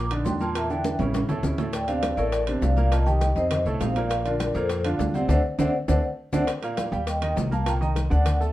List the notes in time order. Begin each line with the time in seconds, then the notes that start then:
Already playing: A#1
0.10 D3 D4 D#4, high bongo, high conga, high timbale, maracas
0.25 E2 G5 C6, high bongo, low bongo, high conga, low timbale, maracas
0.39 A#2 A#3 A#4 A5 C6, high conga, maracas
0.55 A#2 A#3 A#4 E5 A5, high bongo, high conga, high timbale, maracas
0.70 D3 D4 E4 E5 G5, high bongo, high conga, maracas
0.84 high bongo, high conga, high timbale, maracas
0.99 A1 C#3 C#4 E4, high bongo, high conga, high timbale, maracas
1.14 high bongo, high conga, high timbale, maracas
1.28 C#2 A2 A3 A4, high bongo, low conga, low timbale, maracas
1.43 D2 C#3 C#4 E4, high bongo, low bongo, low conga, maracas
1.58 A2 A3 A4, low conga, low timbale, maracas
1.73 D5 G5, high bongo, high conga, high timbale, maracas
1.88 C3 C4 D4 D5 F5, high bongo, high conga, high timbale, maracas
2.03 high bongo, high conga, high timbale, low timbale, maracas
2.17 A1 A2 A3 A4 A#4 D5, high bongo, high conga, maracas
2.32 high bongo, high conga, high timbale, maracas
2.47 C3 C4 D4, high bongo, high conga, high timbale, maracas
2.62 C2 D5 F5, high bongo, low bongo, high conga, low timbale, maracas
2.77 A#2 A#3 A#4 D5 F5, high conga, maracas
2.92 A#2 A#3 A#4 D#5 A5, high bongo, high conga, high timbale, maracas
3.06 D#3 D#4 G4 D#5 G5, high bongo, high conga, maracas
3.21 high bongo, high conga, high timbale, low timbale, maracas
3.36 F2 C3 C4 D#4 C5 D#5, high bongo, high conga, maracas
3.51 high bongo, high conga, low conga, high timbale, maracas
3.65 C2 A2 A3 A4, high bongo, high conga, maracas
3.80 A#1 C3 C4 D#4 C5 F5, high bongo, low bongo, high conga, high timbale, low timbale, maracas
3.95 A#2 A#3 A#4 D5 F5, high timbale, maracas
4.10 D5 F5, high bongo, high conga, high timbale, maracas
4.25 D3 D4 F4 A#4 D5, high bongo, high conga, high timbale, maracas
4.40 high bongo, high conga, high timbale, low timbale, maracas
4.54 F2 A#2 A#3 A4 A#4 C5, high bongo, high conga, maracas
4.69 high bongo, high conga, high timbale, maracas
4.84 D3 D4 F4 D5 F5, high bongo, high conga, high timbale, maracas
4.99 D2, high bongo, low bongo, high conga, low timbale, maracas
5.14 C3 C4 C5 D5 F#5, high conga, maracas
5.28 D2 A3 C4 D4 C5 D5 F#5, low bongo, low conga, high timbale, maracas
5.58 D2 A3 C4 D4 C5 D5 F#5, low bongo, low conga, high timbale, maracas
5.88 D2 A3 C4 D4 C5 D5 F#5, low bongo, low conga, high timbale, maracas
6.33 D2 A3 C4 D4 C5 D5 F#5, low bongo, low conga, high timbale, maracas
6.47 high bongo, high timbale, maracas
6.62 A#2 A#3 A#4 D5 F5, high bongo, high conga, high timbale, maracas
6.77 high bongo, high conga, high timbale, low timbale, maracas
6.92 D#2 G3 G4 G5, high bongo, high conga, maracas
7.07 D#5 G5, high bongo, high conga, high timbale, maracas
7.22 D#3 D#4 D#5, high bongo, high conga, high timbale, maracas
7.36 C2, high bongo, low bongo, high conga, low timbale, maracas
7.51 A#3 A#4 F5 A5 A#5, high conga, maracas
7.66 A#2 A#3 A#4 G5 A#5, high bongo, high conga, high timbale, maracas
7.81 D#3 D#4 D#5, high bongo, high conga, maracas
7.96 high bongo, high conga, high timbale, low timbale, maracas
8.10 D2 D3 D4 D5 F#5, high bongo, high conga, maracas
8.26 high bongo, high conga, low conga, high timbale, maracas
8.40 A3 A4 A5, high bongo, high conga, maracas